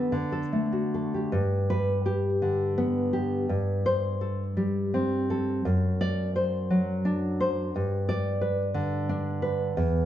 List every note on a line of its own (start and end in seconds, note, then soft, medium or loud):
0.00 0.10 D3 medium
0.00 0.14 B3 soft
0.00 0.14 G4 soft
0.00 0.13 A4 soft
0.00 0.14 B4 soft
0.12 1.29 D3 medium
0.32 0.65 A4 medium
0.53 1.33 A3 soft
0.72 1.33 F#4 soft
0.94 1.33 A4 soft
1.14 1.33 G4 soft
1.32 3.45 G2 medium
1.70 2.29 B4 medium
2.06 3.12 G4 soft
2.42 3.49 D3 medium
2.78 3.49 B3 medium
3.13 3.49 G4 soft
3.49 5.61 G2 medium
3.86 4.43 C5 medium
4.21 5.29 A4 medium
4.57 5.65 G3 medium
4.94 5.65 C4 medium
5.30 5.65 A4 soft
5.65 7.69 F#2 medium
6.01 6.35 D5 medium
6.36 7.39 C5 medium
6.70 7.74 F#3 medium
7.05 7.73 D4 medium
7.40 7.74 C5 medium
7.76 9.72 G2 medium
8.09 8.61 D5 medium
8.41 9.41 B4 medium
8.74 9.75 D3 medium
9.09 9.76 D4 medium
9.42 9.75 B4 medium
9.77 10.05 E2 medium